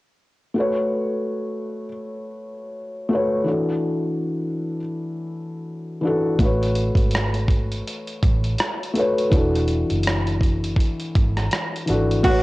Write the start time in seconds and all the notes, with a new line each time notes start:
0.54 A3 F#4 B4
0.60 C#5
3.09 A3 F#4
3.13 B4 C#5
3.44 E3 D4 F#4
3.50 A4
6.01 E3 D4
6.05 F#4 A4
6.39 A1 A3 F#4, kick, closed hi-hat
6.43 B4 C#5
6.63 closed hi-hat
6.75 closed hi-hat
6.95 G#1, kick, closed hi-hat
7.11 closed hi-hat
7.15 cross-stick
7.34 closed hi-hat
7.48 kick, closed hi-hat
7.72 closed hi-hat
7.87 closed hi-hat
8.07 closed hi-hat
8.23 A1, kick, closed hi-hat
8.44 closed hi-hat
8.58 cross-stick, closed hi-hat
8.83 closed hi-hat
8.94 A3 F#4 B4, closed hi-hat
8.99 C#5
9.18 closed hi-hat
9.30 E1 E3 D4 F#4, kick, closed hi-hat
9.36 A4
9.55 closed hi-hat
9.68 closed hi-hat
9.90 F#1, closed hi-hat
10.03 closed hi-hat
10.07 cross-stick
10.27 closed hi-hat
10.41 kick, closed hi-hat
10.64 closed hi-hat
10.76 kick, closed hi-hat
11.00 closed hi-hat
11.15 G#1, kick, closed hi-hat
11.37 cross-stick, closed hi-hat
11.51 cross-stick, closed hi-hat
11.76 closed hi-hat
11.86 G#1 E3 D4 F#4, closed hi-hat
11.92 A4
12.11 closed hi-hat
12.23 A1 A3 F#4, kick, closed hi-hat, crash
12.27 B4 C#5